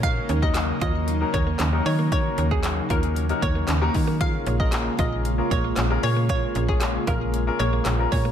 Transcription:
<<
  \new Staff \with { instrumentName = "Synth pluck" } { \time 4/4 \key bes \minor \tempo 4 = 115 f''8 r16 ees''16 r8 ees''8 r8 des''8 r8 des''16 r16 | des''8 r16 aes'16 r8 bes'8. r16 des''16 r4 r16 | f''8 r16 ees''16 r8 ees''8 r8 des''8 r8 des''16 r16 | des''8 r16 aes'16 r8 bes'8. r16 des''16 r8. des''16 r16 | }
  \new Staff \with { instrumentName = "Grand piano" } { \time 4/4 \key bes \minor <bes des' ees' ges' bes'>8 r16 <bes des' ees' ges' bes'>8 r16 <bes des' ees' ges' bes'>8 r16 <bes des' ees' ges' bes'>8. r16 <bes des' ees' ges' bes'>8 r16 | <bes des' ees' ges' bes'>8 r16 <bes des' ees' ges' aes'>8 r16 <bes des' ees' ges' bes'>8 r16 <bes des' ees' ges' bes'>8. r16 <bes des' ees' ges' bes'>8 r16 | <bes des' f' aes' bes'>8 r16 <bes des' f' aes' bes'>8 r16 <bes des' f' aes' bes'>8 r16 <bes des' f' aes' bes'>8. r16 <bes des' f' aes' bes'>8 r16 | <bes des' f' aes' bes'>8 r16 <bes des' f' aes' des''>8 r16 <bes des' f' aes' bes'>8 r16 <bes des' f' aes' bes'>8. r16 <bes des' f' aes' bes'>8 r16 | }
  \new Staff \with { instrumentName = "Clean electric guitar" } { \time 4/4 \key bes \minor ees'16 r16 des'16 r8. f'16 r8. bes16 bes16 des'16 r8 bes16 | ees'16 r16 des'16 r8. f'16 r8. bes16 bes16 des'16 r8 bes16 | f'16 r16 des'16 r8. f'16 r8. bes16 bes16 des'16 r8 bes16 | f'16 r16 des'16 r8. f'16 r8. bes16 bes16 des'16 r8 bes16 | }
  \new Staff \with { instrumentName = "Analog synth pad" } { \time 4/4 \key bes \minor << { <ges ees'>1~ | <ges ees'>1 | <aes f'>1~ | <aes f'>1 | } \\ { <des bes>1~ | <des bes>1~ | <des bes>1~ | <des bes>1 | } >> }
  \new Staff \with { instrumentName = "FM bass" } { \clef bass \time 4/4 \key bes \minor bes,8 ees,4 ees,4 ees,8 ees,8 ees8~ | ees8 ees,4 ees,4 ees,8 ees,8 ees8~ | ees8 bes,,4 bes,,4 bes,,8 bes,,8 bes,8~ | bes,8 bes,,4 bes,,4 bes,,8 bes,,8 bes,8 | }
  \new DrumStaff \with { instrumentName = "Drums" } \drummode { \time 4/4 <hh bd>8 hh16 bd16 <hc hh sn>8 <hh bd>8 hh8 <hh bd>8 <hc hh sn>8 hho8 | <hh bd>8 hh16 bd16 <hc hh sn>8 <hh bd>16 hh16 hh16 hh16 <hh bd>8 <hc hh sn>8 <hho bd>8 | <hh bd>8 hh16 bd16 <hc hh sn>8 <hh bd>8 hh8 <hh bd>8 <hc hh sn>8 hho8 | <hh bd>8 hh16 bd16 <hc hh sn>8 <hh bd>8 hh8 hh8 <hc hh sn>8 <hho bd>8 | }
>>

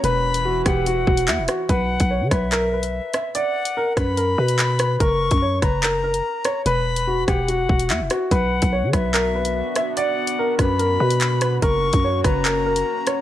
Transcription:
<<
  \new Staff \with { instrumentName = "Flute" } { \time 4/4 \key b \minor \tempo 4 = 145 b''4. fis''2~ fis''8 | fis''4. e''2~ e''8 | fis''4. b''2~ b''8 | cis'''4. ais''2~ ais''8 |
b''4. fis''2~ fis''8 | fis''4. e''2~ e''8 | fis''4. b''2~ b''8 | cis'''4. ais''2~ ais''8 | }
  \new Staff \with { instrumentName = "Grand piano" } { \time 4/4 \key b \minor b'4 fis'8 g'8 fis'8 fis'8 e'8 fis'8 | b'4 cis''8 b'8 ais'8 b'4 e''8 | d''4 ais'8 b'8 ais'8 b'4 b'8 | ais'4 cis''8 b'8 ais'8 ais'4 cis''8 |
b'4 fis'8 g'8 fis'8 fis'8 e'8 fis'8 | b'4 cis''8 b'8 ais'8 b'4 e''8 | d''4 ais'8 b'8 ais'8 b'4 b'8 | ais'4 cis''8 b'8 ais'8 ais'4 cis''8 | }
  \new Staff \with { instrumentName = "Ambient pad" } { \time 4/4 \key b \minor <e e' fis' b'>1 | r1 | r1 | r1 |
r1 | <b d' fis'>1~ | <b d' fis'>1 | <ais cis' fis'>1 | }
  \new Staff \with { instrumentName = "808-style bass" } { \clef bass \time 4/4 \key b \minor e,,4. e,,4 e,,8 e,16 e,,16 r8 | b,,8. b,,8 d16 b,,4.~ b,,16 r8. | r4. fis,4 b,4. | fis,,8. fis,8. fis,,4. r4 |
e,,4. e,,4 e,,8 e,16 e,,16 r8 | b,,8. b,,8 d16 b,,4.~ b,,16 r8. | r4. fis,4 b,4. | fis,,8. fis,8. fis,,4. r4 | }
  \new DrumStaff \with { instrumentName = "Drums" } \drummode { \time 4/4 hh8. hh16 r8 <hh bd ss>8 hh8 bd16 hh16 <hc hh>8 <hh ss>8 | <hh bd>8. <hh bd>16 r8 <hh bd ss>8 <hc hh>8. hh16 r8 <hh ss>8 | hh8. hh16 r8 <hh bd ss>8 hh8. hh16 <hc hh>8 <hh ss>8 | <hh bd>8. <hh bd>16 r8 <hh bd ss>8 <hc hh>8. hh16 r8 <hh ss>8 |
hh8. hh16 r8 <hh bd ss>8 hh8 bd16 hh16 <hc hh>8 <hh ss>8 | <hh bd>8. <hh bd>16 r8 <hh bd ss>8 <hc hh>8. hh16 r8 <hh ss>8 | hh8. hh16 r8 <hh bd ss>8 hh8. hh16 <hc hh>8 <hh ss>8 | <hh bd>8. <hh bd>16 r8 <hh bd ss>8 <hc hh>8. hh16 r8 <hh ss>8 | }
>>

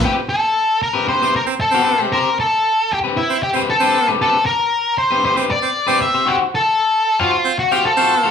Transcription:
<<
  \new Staff \with { instrumentName = "Lead electric guitar" } { \time 4/4 \key a \minor \tempo 4 = 115 g'8 a'4 bes'8 c''8 bes'8 a'8. r16 | bes'8 a'4 g'8 e'8 g'8 a'8. r16 | a'8 bes'4 c''8 c''8 d''4 e''8 | g'8 a'4~ a'16 f'8. fis'16 g'16 a'4 | }
  \new Staff \with { instrumentName = "Clean electric guitar" } { \time 4/4 \key a \minor <c' g' b'>16 r4. <c' g' b'>16 <c' g' b'>16 <c' g' b'>16 r8. <c' g' b'>8 <c' g' c''>16 | <c' g' c''>16 r4. <c' g' b'>16 r8. <c' g' b'>16 r16 <c' g' b'>16 r16 <c' g' b'>16 | <c' g' b'>16 r4. <c' g' b'>16 <c' g' b'>16 <c' g' b'>16 r8. <c' g' b'>16 r16 <c' g' c''>16 | <fis' c'' fis''>16 r4. <fis' c'' f''>16 r8. <fis' c'' f''>16 r16 <fis' c'' f''>16 r16 <fis' c'' f''>16 | }
  \new Staff \with { instrumentName = "Baritone saxophone" } { \time 4/4 \key a \minor r2 r16 c'16 r16 c'16 r16 c'8. | r2 r16 c'16 r16 c'16 r16 c'8. | r2 r16 c'16 r16 c'16 r16 c'8. | r2 r16 c'16 r16 c'16 r16 c'8. | }
>>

